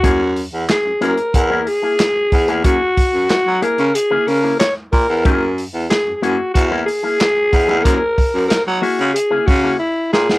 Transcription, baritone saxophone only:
\new Staff \with { instrumentName = "Baritone saxophone" } { \clef bass \time 4/4 \key fis \mixolydian \tempo 4 = 92 fis,8. e,16 r16 fis,16 fis,16 r16 e,8 r4 e,16 e,16 | fis,16 r8 fis,16 fis16 fis16 r16 cis16 r16 cis16 cis8 r8 ais,16 e,16 | fis,8. e,16 r16 fis,16 fis,16 r16 e,8 r4 e,16 e,16 | fis,16 r8 fis,16 fis16 fis16 r16 cis16 r16 cis16 cis8 r8 ais,16 e,16 | }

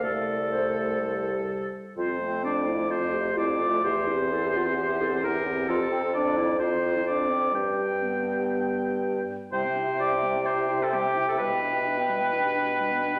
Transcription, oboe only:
\new Staff \with { instrumentName = "Oboe" } { \time 4/4 \key c \mixolydian \tempo 4 = 128 a'2.~ a'8 r8 | c''4 d''4 c''4 d''4 | c''2. bes'4 | \key c \major a'4 d''4 c''4 d''4 |
g''2.~ g''8 r8 | c''4 d''4 c''8. a'16 g'8. a'16 | b'1 | }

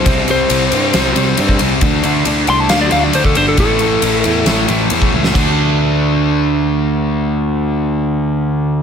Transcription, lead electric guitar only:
\new Staff \with { instrumentName = "Lead electric guitar" } { \time 4/4 \key a \dorian \tempo 4 = 136 c''8 c''2. r8 | r4. c'''16 a''16 f''16 d''16 f''16 d''16 c''16 a'16 c''16 a'16 | a'2 r2 | r1 |
r1 | }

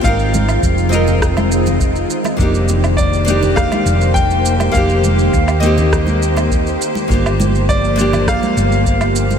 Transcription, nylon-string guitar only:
\new Staff \with { instrumentName = "Nylon-string guitar" } { \time 4/4 \key f \dorian \tempo 4 = 102 <c' ees' f' bes'>4. <c' ees' f' bes'>2~ <c' ees' f' bes'>8 | <bes d' ees' g'>4. <bes d' ees' g'>2~ <bes d' ees' g'>8 | <bes d' ees' g'>4. <bes c' ees' g'>2~ <bes c' ees' g'>8 | <bes d' f' g'>4. <bes d' f' g'>2~ <bes d' f' g'>8 | }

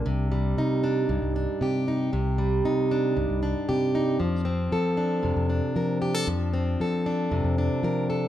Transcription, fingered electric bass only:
\new Staff \with { instrumentName = "Fingered electric bass" } { \clef bass \time 4/4 \key c \dorian \tempo 4 = 116 c,4 c4 c,16 c,8 r16 c4 | c,4 c4 c,16 c,8 r16 c4 | f,4 f4 f,16 f,8 r16 f4 | f,4 f4 f,16 f,8 r16 f4 | }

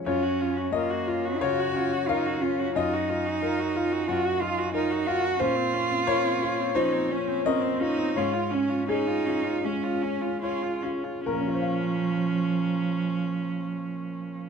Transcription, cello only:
\new Staff \with { instrumentName = "Cello" } { \time 4/4 \key bes \minor \tempo 4 = 87 des'4 bes4 ges'4 ees'8 des'8 | ees'2 ges'8 f'8 ees'8 ges'8 | f'2 ees'8 des'8 c'8 ees'8 | f'8 des'8 ees'4 des'4 f'8 r8 |
f1 | }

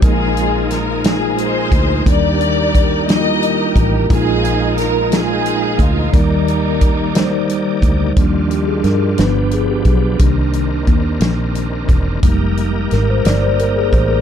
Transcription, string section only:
\new Staff \with { instrumentName = "String section" } { \time 6/8 \key ees \major \tempo 4. = 59 << { aes'4 bes'8 aes'8 c''4 | d''4. ees''4 r8 | aes'4 bes'8 aes'4 f'8 | ees'2~ ees'8 r8 |
r2. | r2. | r2. | } \\ { <ees' f'>4. r8 <ees' aes'>4 | <g' bes'>4. <g' bes'>4. | <ees' f'>4. <ees' f'>4. | <g bes>2~ <g bes>8 r8 |
r2. | r2. | r2. | } >> }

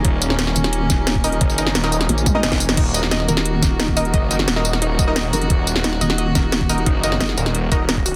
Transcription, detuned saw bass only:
\new Staff \with { instrumentName = "Detuned saw bass" } { \clef bass \time 4/4 \key ees \minor \tempo 4 = 176 ees,,4. r2 r8 | ges,,4 ees,,4 r4 f,,4 | ees,,4. r2 r8 | ges,,4 ees,,2~ ees,,8 r8 |
ees,,4. r2 r8 | ges,,4 r8 ees,,4 ees,,4. | }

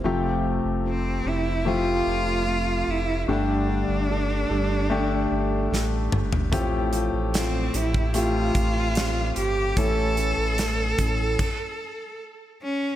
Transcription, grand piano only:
<<
  \new Staff \with { instrumentName = "Grand piano" } { \time 4/4 \key f \major \tempo 4 = 74 <f a g'>2 <f a g'>2 | <a d' g'>2 <a d' g'>2 | <f a g'>2 <a f' g'>2 | <cis' e' a'>2 r2 | }
  \new Staff \with { instrumentName = "Grand piano" } { \clef bass \time 4/4 \key f \major c4. r2 r8 | <g, d>4. r2 r8 | a,4. r2 r8 | <a, e>4. r2 r8 | }
>>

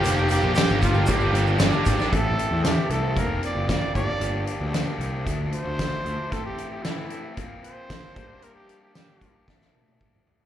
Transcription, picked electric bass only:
\new Staff \with { instrumentName = "Picked electric bass" } { \clef bass \time 4/4 \key g \dorian \tempo 4 = 114 f,,8. bes,,16 r16 g,,8 g,,16 g,,8 g,,8 g,,16 r16 aes,,16 r16 | a,,8 r16 e,8 r16 c,8 f,,8 r16 fis,,8 r16 g,,16 r16 | g,,8 r16 d,8 r16 c,8 d,8 r16 d,8 r16 d,16 r16 | r1 |
r1 | }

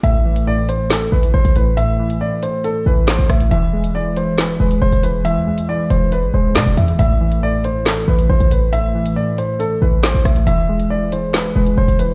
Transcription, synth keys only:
\new Staff \with { instrumentName = "Synth keys" } { \clef bass \time 4/4 \key a \minor \tempo 4 = 138 a,8 e8 a,8 a,4 e4 a,8 | a,8 e8 a,8 a,4 e4 a,8 | e8 gis8 e8 e4 gis4 e8 | e8 gis8 e8 e4 gis4 e8 |
a,8 e8 a,8 a,4 e4 a,8 | a,8 e8 a,8 a,4 e4 a,8 | e8 gis8 e8 e4 gis4 e8 | }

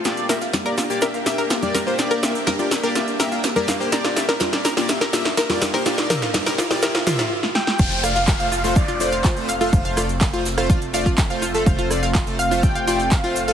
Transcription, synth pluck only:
\new Staff \with { instrumentName = "Synth pluck" } { \time 4/4 \key f \major \tempo 4 = 124 f'16 r16 bes'16 f'16 r16 bes'16 f'16 r16 bes'16 f'16 r16 bes'16 f'16 r16 bes'16 f'16 | r16 bes'16 f'16 r16 bes'16 f'16 r16 bes'16 f'16 r16 bes'16 f'16 r16 bes'16 f'16 r16 | bes'16 f'16 r16 bes'16 f'16 r16 bes'16 f'16 r16 bes'16 f'16 r16 bes'16 f'16 r16 bes'16 | f'16 r16 bes'16 f'16 r16 bes'16 f'16 r16 bes'16 f'16 f'16 f'16 r4 |
f'16 r16 f''16 f'16 r16 f''16 f'16 r16 f''16 f'16 r16 f''16 f'16 r16 f''16 f'16 | r16 f''16 f'16 r16 f''16 f'16 r16 f''16 f'16 r16 f''16 f'16 r16 f''16 f'16 r16 | f''16 f'16 r16 f''16 f'16 r16 f''16 f'16 r16 f''16 f'16 r16 f''16 f'16 r16 f''16 | }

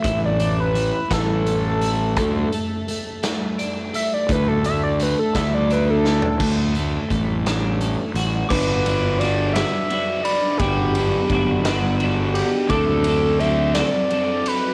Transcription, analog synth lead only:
\new Staff \with { instrumentName = "Analog synth lead" } { \time 6/8 \key g \major \tempo 4. = 57 e''16 d''8 b'8. a'4.~ | a'8 r2 e''16 d''16 | b'16 a'16 e''16 d''16 b'16 a'16 e''16 d''16 b'16 a'16 a'8 | r2. |
b'4 d''8 e''4 d''8 | g'4. r4 g'8 | a'4 e''8 d''4 b'8 | }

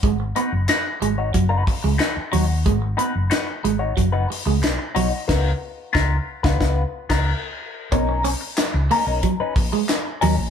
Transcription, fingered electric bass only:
\new Staff \with { instrumentName = "Fingered electric bass" } { \clef bass \time 4/4 \key gis \dorian \tempo 4 = 91 gis,,8 r16 fis,,16 r8 gis,,8 fis,,8 r16 cis,16 r8 dis,8 | gis,,8 r16 fis,,16 r8 gis,,8 fis,,8 r16 cis,16 b,,16 r16 b,,16 r16 | cis,8 r8 cis,8 r16 cis,16 cis,8 r16 cis,8 r8. | b,,8. r8 cis,16 r16 b,,16 r8 ais,,16 r8. dis,16 ais,,16 | }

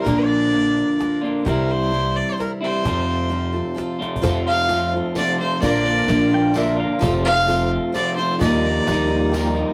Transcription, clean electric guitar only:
\new Staff \with { instrumentName = "Clean electric guitar" } { \time 3/4 \key f \major \tempo 4 = 129 <bes, d bes d' f'>2~ <bes, d bes d' f'>8 <bes, d bes d' f'>8 | <c e g c' e'>2~ <c e g c' e'>8 <c e g c' e'>8 | <f, c f a c' f'>2~ <f, c f a c' f'>8 <f, c f a c' f'>8 | <f, c f a c' f'>8 <f a c' f'>8 <f a c' f'>4 <f, c f a c' f'>8 <f a c' f'>8 |
<bes, d bes d' f'>8 <bes d' f'>8 <d bes d' f'>4 <bes, d bes d' f'>8 <bes d' f'>8 | <f, c f a c' f'>8 <f a c' f'>8 <f a c' f'>4 <f, c f a c' f'>8 <f a c' f'>8 | <ees f g ees' bes'>8 <g ees' bes'>8 <f g ees' bes'>4 <ees f g ees' bes'>8 <g ees' bes'>8 | }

